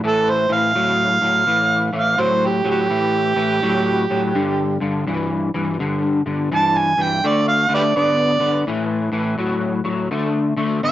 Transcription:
0.04 clean electric guitar A2 E3, harmonica A4
0.30 harmonica C5
0.49 clean electric guitar A2 E3, harmonica F5
0.75 clean electric guitar A2 F#3
1.21 clean electric guitar A2 F#3
1.47 clean electric guitar A2 E3
1.93 clean electric guitar A2 E3
1.99 harmonica F5
2.18 clean electric guitar A2 F#3
2.22 harmonica C5
2.46 harmonica G4
2.64 clean electric guitar A2 F#3
2.70 harmonica G4
2.90 clean electric guitar A2 E3
3.36 clean electric guitar A2 E3
3.62 clean electric guitar A2 F#3
4.10 clean electric guitar A2 F#3
4.35 clean electric guitar G2 D3
4.80 clean electric guitar G2 D3
5.07 clean electric guitar G2 E3
5.54 clean electric guitar G2 E3
5.79 clean electric guitar G2 D3
6.26 clean electric guitar G2 D3
6.51 clean electric guitar G2 E3, harmonica A5
6.78 harmonica G#5
6.97 clean electric guitar G2 E3
7.02 harmonica G5
7.24 clean electric guitar D3 A3, harmonica D5
7.48 harmonica F5
7.69 clean electric guitar D3 A3
7.75 harmonica G4 B4 D5
7.96 clean electric guitar D3 B3, harmonica D5
8.40 clean electric guitar D3 B3
8.67 clean electric guitar A2 E3
9.12 clean electric guitar A2 E3
9.38 clean electric guitar A2 F#3
9.84 clean electric guitar A2 F#3
10.11 clean electric guitar D3 A3
10.57 clean electric guitar D3 A3
10.83 clean electric guitar D3 B3, harmonica F5

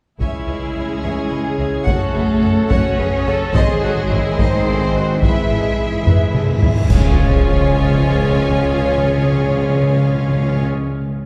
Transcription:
0.19 double bass section C#2, timpani C#3, trombone section C#3 C#4, cello section G#3, pipe organ C#4 E4 C#5 G#5, viola section E4, french horn section E4 C#5, violin section G#4 C#5 E5, taiko
0.48 double bass section C#2, violin section B4 D#5
0.75 double bass section C#2, violin section C#5 E5
1.03 double bass section C#2, viola section G#4, violin section C#5 E5
1.31 double bass section C#2, violin section B4 D#5
1.59 double bass section C#2, violin section C#5 E5
1.86 double bass section F#1, cello section A3, viola section F#4, french horn section F#4, pipe organ F#4 F#5, violin section A4 C#5 F#5, taiko
2.14 double bass section F#1, viola section G#4, violin section B4 E5
2.41 double bass section F#1, viola section A4, violin section C#5 F#5
2.70 double bass section F#1, cello section C#4, viola section F#4, violin section C#5 F#5, taiko
2.99 double bass section F#1, viola section G#4, violin section B4 E5
3.27 double bass section F#1, viola section A4, violin section C#5 F#5
3.54 double bass section G#1, timpani G#2, trombone section D#3 G#3, pipe organ G#3 G#4 D#5 C6, cello section G#3, french horn section G#4, violin section G#4 C5 D#5, viola section G#4, taiko
3.83 double bass section G#1, viola section F#4, violin section A4 C#5
4.11 double bass section G#1, viola section E4, violin section C5 D#5
4.39 double bass section G#1, cello section C4, viola section D#4, violin section C5 D#5, french horn section C5, taiko
4.67 double bass section G#1, viola section E4, violin section A4 C#5
4.95 double bass section G#1, viola section F#4
4.99 violin section C5 D#5
5.21 double bass section G#1, trombone section E3, cello section E4, viola section G#4, pipe organ B4 E5, french horn section B4, violin section E5, taiko, cymbal swell
5.27 timpani G#2, violin section B4 E5
5.36 timpani G#2
5.43 timpani G#2
5.49 double bass section G#1, timpani G#2, violin section A4 D#5
5.59 timpani G#2
5.67 timpani G#2
5.74 double bass section G#1, timpani G#2
5.80 timpani G#2, violin section B4 E5
5.88 timpani G#2
5.96 timpani G#2
6.03 double bass section G#1, timpani G#2, taiko low-mid
6.08 timpani G#2, violin section B4 E5
6.19 timpani G#2
6.26 timpani G#2
6.34 double bass section G#1, timpani G#2, violin section A4 D#5, taiko mid
6.41 timpani G#2
6.49 timpani G#2
6.56 timpani G#2
6.61 double bass section G#1, timpani G#2, violin section B4 E5, taiko low
6.72 timpani G#2
6.80 timpani G#2
6.89 double bass section C#2, timpani C#3, trombone section F3 G#3, pipe organ G#3 G#4 C#5 F5, cello section C#4, viola section F4 G#4, french horn section G#4 C#5, violin section C#5 G#5, concert bass drum, taiko, crash, sub drop
6.96 timpani C#3
7.03 timpani C#3
7.10 timpani C#3
7.16 timpani C#3
7.23 timpani C#3
7.29 timpani C#3
7.36 timpani C#3
7.43 timpani C#3
7.50 timpani C#3
7.56 timpani C#3
7.63 timpani C#3
7.69 timpani C#3
7.77 timpani C#3
7.84 timpani C#3
7.90 timpani C#3
7.97 timpani C#3
8.04 timpani C#3
8.17 timpani C#3
8.23 timpani C#3
8.30 timpani C#3
8.37 timpani C#3
8.44 timpani C#3
8.51 timpani C#3
8.57 timpani C#3
8.65 timpani C#3
8.71 timpani C#3
8.78 timpani C#3
8.84 timpani C#3
8.91 timpani C#3
8.98 timpani C#3
9.04 timpani C#3
9.11 timpani C#3
9.18 timpani C#3
9.24 timpani C#3
9.31 timpani C#3
9.38 timpani C#3
9.44 timpani C#3
9.50 timpani C#3
9.56 timpani C#3
9.63 timpani C#3
9.69 timpani C#3
9.76 timpani C#3
9.83 timpani C#3
9.90 timpani C#3
9.97 timpani C#3
10.03 timpani C#3
10.10 timpani C#3
10.17 timpani C#3
10.23 timpani C#3
10.30 timpani C#3
10.36 timpani C#3
10.43 timpani C#3
10.49 timpani C#3
10.55 timpani C#3
10.62 timpani C#3

